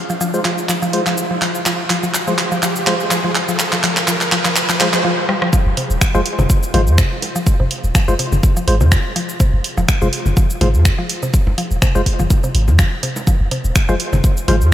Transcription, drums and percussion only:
0.10 cabasa
0.21 cabasa
0.34 cabasa
0.45 clap, open hi-hat
0.58 cabasa
0.69 clap, cabasa
0.82 cabasa
0.93 open hi-hat
1.06 clap, cabasa
1.18 cabasa
1.42 clap, open hi-hat
1.55 cabasa
1.66 clap, cabasa
1.90 clap, open hi-hat
2.03 cabasa
2.14 clap, cabasa
2.27 cabasa
2.38 clap, open hi-hat
2.52 cabasa
2.63 clap, cabasa
2.76 cabasa
2.87 clap, open hi-hat
3.00 cabasa
3.11 clap, cabasa
3.35 clap, open hi-hat
3.48 cabasa
3.59 clap, cabasa
3.73 clap, cabasa
3.84 clap, open hi-hat
3.97 clap, cabasa
4.08 clap, cabasa
4.21 clap, cabasa
4.32 clap, open hi-hat
4.45 clap, cabasa
4.56 clap, cabasa
4.69 clap, cabasa
4.80 clap, open hi-hat
4.94 clap, cabasa
5.29 cross-stick
5.42 cross-stick
5.53 kick, low bongo, cabasa
5.77 open hi-hat
5.90 cabasa
6.01 finger snap, kick, cabasa
6.15 cabasa
6.26 open hi-hat
6.39 low bongo, low conga, cabasa
6.50 kick, cabasa
6.63 cabasa
6.74 open hi-hat, low conga
6.87 cabasa
6.98 finger snap, kick, cabasa
7.22 open hi-hat, low bongo
7.36 cabasa
7.47 kick, cabasa
7.71 open hi-hat
7.84 cabasa
7.95 finger snap, kick, cabasa
8.08 low bongo, cabasa
8.19 open hi-hat
8.32 low conga, cabasa
8.43 kick, cabasa
8.57 cabasa
8.68 open hi-hat
8.81 low conga, cabasa
8.92 finger snap, kick, low bongo, cabasa
9.16 open hi-hat
9.29 cabasa
9.40 kick, cabasa
9.64 open hi-hat
9.77 low bongo, cabasa
9.88 finger snap, kick, cabasa
10.02 cabasa
10.13 open hi-hat
10.26 low conga, cabasa
10.37 kick, cabasa
10.50 cabasa
10.61 open hi-hat, low bongo, low conga
10.74 cabasa
10.85 finger snap, kick, cabasa
11.09 open hi-hat
11.23 cabasa
11.34 kick, cabasa
11.47 low bongo
11.58 open hi-hat
11.71 cabasa
11.82 finger snap, kick, cabasa
11.95 cabasa
12.06 kick, open hi-hat
12.19 low conga, cabasa
12.30 kick, low bongo, cabasa
12.44 cabasa
12.55 open hi-hat
12.68 low conga, cabasa
12.79 finger snap, kick, cabasa
13.03 open hi-hat
13.16 low bongo, cabasa
13.27 kick, low bongo, cabasa
13.51 open hi-hat
13.65 cabasa
13.76 finger snap, kick, cabasa
13.89 cabasa
14.00 open hi-hat
14.13 low bongo, low conga, cabasa
14.24 kick, cabasa
14.37 cabasa
14.48 open hi-hat, low conga
14.61 cabasa

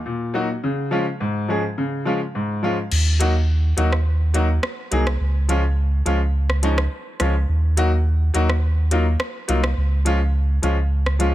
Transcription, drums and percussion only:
2.92 crash
3.20 closed hi-hat
3.78 closed hi-hat
3.93 cross-stick
4.34 closed hi-hat
4.63 cross-stick
4.92 closed hi-hat
5.07 cross-stick
5.49 closed hi-hat
6.06 closed hi-hat
6.50 cross-stick
6.63 closed hi-hat
6.78 cross-stick
7.20 cross-stick, closed hi-hat
7.77 closed hi-hat
8.35 closed hi-hat
8.50 cross-stick
8.91 closed hi-hat
9.20 cross-stick
9.49 closed hi-hat
9.64 cross-stick
10.06 closed hi-hat
10.63 closed hi-hat
11.06 cross-stick
11.20 closed hi-hat

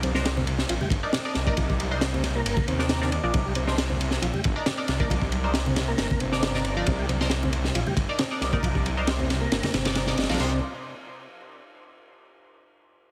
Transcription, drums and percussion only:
0.03 ride, high conga
0.15 snare
0.25 snare, ride
0.37 low conga
0.47 ride
0.59 snare
0.69 ride
0.81 low conga
0.90 kick, ride
1.13 snare, ride
1.35 snare, ride
1.47 kick
1.57 kick, ride, high conga
1.70 kick
1.80 ride, high conga
2.01 snare, ride
2.14 low conga
2.23 snare, ride
2.46 ride
2.57 kick, low conga
2.68 ride
2.79 snare
2.89 snare, ride
3.02 snare
3.12 ride
3.34 kick, ride, high conga
3.55 ride, high conga
3.67 snare
3.78 snare, ride
3.90 low conga
4.01 ride
4.11 snare
4.22 ride
4.34 low conga
4.44 kick, ride
4.66 snare, ride
4.88 snare, ride
5.00 kick
5.10 kick, ride, high conga
5.22 kick
5.32 ride, high conga
5.54 snare, ride
5.66 low conga
5.76 snare, ride
5.98 snare, ride
6.10 kick, low conga
6.20 ride
6.32 snare
6.43 snare, ride
6.54 snare
6.65 ride
6.86 kick, ride, high conga
7.09 ride, high conga
7.21 snare
7.30 snare, ride
7.43 low conga
7.53 ride
7.64 snare
7.75 ride
7.86 low conga
7.97 kick, ride
8.19 snare, ride
8.41 snare, ride
8.53 kick
8.63 kick, ride, high conga
8.75 kick
8.86 ride, high conga
9.07 snare, ride
9.19 low conga
9.30 snare, ride
9.52 snare, ride
9.63 snare, ride, low conga
9.74 snare, ride
9.85 snare, ride
9.95 snare, ride
10.07 snare
10.18 snare, ride
10.23 snare, ride
10.29 snare, ride
10.34 snare, ride
10.40 snare, china

